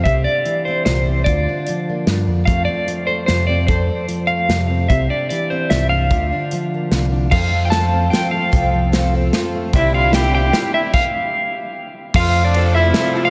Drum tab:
CC |------|------|------|------|
RD |------|------|------|------|
HH |x-x-x-|x-x-x-|x-x-x-|x-x-x-|
SD |----o-|----o-|----o-|----o-|
BD |o-----|o-----|o-----|o-----|

CC |------|------|x-----|------|
RD |------|------|------|------|
HH |x-x-x-|x-x-x-|--x-x-|x-x-x-|
SD |----o-|----o-|--o-o-|--o-o-|
BD |o-----|o-----|o-----|o-----|

CC |------|x-----|x-----|
RD |------|------|--x-x-|
HH |x-x-x-|------|------|
SD |--o-o-|------|----o-|
BD |o-----|o-----|o-----|